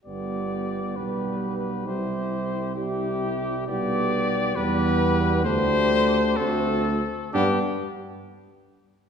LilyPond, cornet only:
\new Staff \with { instrumentName = "Cornet" } { \time 6/8 \key g \major \tempo 4. = 66 d''4. b'4 b'8 | c''4. g'4. | d''4. b'4. | c''4. a'4. |
g'8 r2 r8 | }